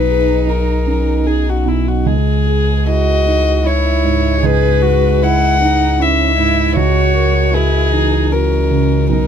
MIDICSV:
0, 0, Header, 1, 5, 480
1, 0, Start_track
1, 0, Tempo, 789474
1, 1254, Time_signature, 3, 2, 24, 8
1, 3174, Tempo, 778210
1, 5674, End_track
2, 0, Start_track
2, 0, Title_t, "Violin"
2, 0, Program_c, 0, 40
2, 0, Note_on_c, 0, 71, 74
2, 296, Note_on_c, 0, 70, 53
2, 305, Note_off_c, 0, 71, 0
2, 768, Note_on_c, 0, 68, 55
2, 777, Note_off_c, 0, 70, 0
2, 908, Note_on_c, 0, 66, 48
2, 917, Note_off_c, 0, 68, 0
2, 1020, Note_on_c, 0, 64, 46
2, 1029, Note_off_c, 0, 66, 0
2, 1142, Note_on_c, 0, 66, 46
2, 1151, Note_off_c, 0, 64, 0
2, 1258, Note_on_c, 0, 68, 62
2, 1267, Note_off_c, 0, 66, 0
2, 1743, Note_on_c, 0, 75, 73
2, 1752, Note_off_c, 0, 68, 0
2, 2226, Note_on_c, 0, 73, 63
2, 2235, Note_off_c, 0, 75, 0
2, 2708, Note_on_c, 0, 71, 79
2, 2717, Note_off_c, 0, 73, 0
2, 3180, Note_on_c, 0, 78, 90
2, 3189, Note_off_c, 0, 71, 0
2, 3664, Note_on_c, 0, 76, 72
2, 3673, Note_off_c, 0, 78, 0
2, 4118, Note_off_c, 0, 76, 0
2, 4122, Note_on_c, 0, 73, 80
2, 4604, Note_on_c, 0, 68, 78
2, 4614, Note_off_c, 0, 73, 0
2, 5083, Note_on_c, 0, 70, 60
2, 5092, Note_off_c, 0, 68, 0
2, 5569, Note_off_c, 0, 70, 0
2, 5572, Note_on_c, 0, 70, 63
2, 5674, Note_off_c, 0, 70, 0
2, 5674, End_track
3, 0, Start_track
3, 0, Title_t, "Cello"
3, 0, Program_c, 1, 42
3, 0, Note_on_c, 1, 63, 53
3, 1013, Note_off_c, 1, 63, 0
3, 1745, Note_on_c, 1, 66, 56
3, 2216, Note_on_c, 1, 64, 48
3, 2225, Note_off_c, 1, 66, 0
3, 2676, Note_off_c, 1, 64, 0
3, 2680, Note_on_c, 1, 68, 67
3, 2928, Note_on_c, 1, 66, 61
3, 2938, Note_off_c, 1, 68, 0
3, 3173, Note_on_c, 1, 64, 61
3, 3182, Note_off_c, 1, 66, 0
3, 3412, Note_off_c, 1, 64, 0
3, 3416, Note_on_c, 1, 63, 64
3, 3654, Note_on_c, 1, 61, 55
3, 3664, Note_off_c, 1, 63, 0
3, 3882, Note_off_c, 1, 61, 0
3, 3886, Note_on_c, 1, 64, 58
3, 4127, Note_on_c, 1, 66, 67
3, 4136, Note_off_c, 1, 64, 0
3, 4602, Note_on_c, 1, 64, 52
3, 4611, Note_off_c, 1, 66, 0
3, 4844, Note_on_c, 1, 63, 53
3, 4853, Note_off_c, 1, 64, 0
3, 5082, Note_on_c, 1, 61, 49
3, 5091, Note_off_c, 1, 63, 0
3, 5570, Note_off_c, 1, 61, 0
3, 5574, Note_on_c, 1, 63, 41
3, 5674, Note_off_c, 1, 63, 0
3, 5674, End_track
4, 0, Start_track
4, 0, Title_t, "Grand piano"
4, 0, Program_c, 2, 0
4, 0, Control_c, 2, 64, 127
4, 0, Note_on_c, 2, 35, 48
4, 0, Note_on_c, 2, 47, 39
4, 47, Note_on_c, 2, 68, 34
4, 286, Note_on_c, 2, 63, 32
4, 435, Note_off_c, 2, 68, 0
4, 526, Note_on_c, 2, 61, 25
4, 674, Note_off_c, 2, 63, 0
4, 757, Note_on_c, 2, 63, 33
4, 769, Note_off_c, 2, 61, 0
4, 1005, Note_off_c, 2, 47, 0
4, 1005, Note_on_c, 2, 47, 28
4, 1149, Note_off_c, 2, 63, 0
4, 1227, Note_off_c, 2, 35, 0
4, 1250, Note_off_c, 2, 47, 0
4, 1250, Note_on_c, 2, 37, 43
4, 1267, Control_c, 2, 64, 0
4, 1382, Control_c, 2, 64, 127
4, 1493, Note_on_c, 2, 68, 36
4, 1740, Note_on_c, 2, 64, 36
4, 1885, Note_off_c, 2, 68, 0
4, 1978, Note_on_c, 2, 63, 32
4, 2123, Note_off_c, 2, 64, 0
4, 2210, Note_on_c, 2, 64, 39
4, 2217, Note_off_c, 2, 63, 0
4, 2457, Note_on_c, 2, 44, 42
4, 2594, Note_off_c, 2, 64, 0
4, 2667, Note_off_c, 2, 37, 0
4, 2694, Note_on_c, 2, 37, 57
4, 2704, Control_c, 2, 64, 0
4, 2804, Control_c, 2, 64, 127
4, 2838, Note_off_c, 2, 44, 0
4, 2929, Note_on_c, 2, 68, 45
4, 3175, Note_on_c, 2, 64, 42
4, 3318, Note_off_c, 2, 68, 0
4, 3414, Note_on_c, 2, 63, 38
4, 3559, Note_off_c, 2, 64, 0
4, 3648, Note_on_c, 2, 64, 48
4, 3653, Note_off_c, 2, 63, 0
4, 3887, Note_on_c, 2, 44, 42
4, 4031, Note_off_c, 2, 64, 0
4, 4104, Note_off_c, 2, 37, 0
4, 4124, Note_on_c, 2, 37, 53
4, 4126, Note_off_c, 2, 44, 0
4, 4140, Control_c, 2, 64, 0
4, 4224, Control_c, 2, 64, 127
4, 4359, Note_on_c, 2, 70, 42
4, 4585, Note_on_c, 2, 66, 41
4, 4743, Note_off_c, 2, 70, 0
4, 4832, Note_on_c, 2, 52, 32
4, 4978, Note_off_c, 2, 66, 0
4, 5074, Note_on_c, 2, 66, 38
4, 5078, Note_off_c, 2, 52, 0
4, 5324, Note_on_c, 2, 49, 34
4, 5469, Note_off_c, 2, 66, 0
4, 5546, Note_off_c, 2, 37, 0
4, 5559, Note_on_c, 2, 35, 38
4, 5571, Note_off_c, 2, 49, 0
4, 5586, Control_c, 2, 64, 0
4, 5674, Note_off_c, 2, 35, 0
4, 5674, End_track
5, 0, Start_track
5, 0, Title_t, "Sub bass"
5, 0, Program_c, 3, 38
5, 0, Note_on_c, 3, 35, 63
5, 1258, Note_on_c, 3, 37, 58
5, 1267, Note_off_c, 3, 35, 0
5, 4126, Note_off_c, 3, 37, 0
5, 4130, Note_on_c, 3, 37, 61
5, 5569, Note_on_c, 3, 35, 55
5, 5578, Note_off_c, 3, 37, 0
5, 5674, Note_off_c, 3, 35, 0
5, 5674, End_track
0, 0, End_of_file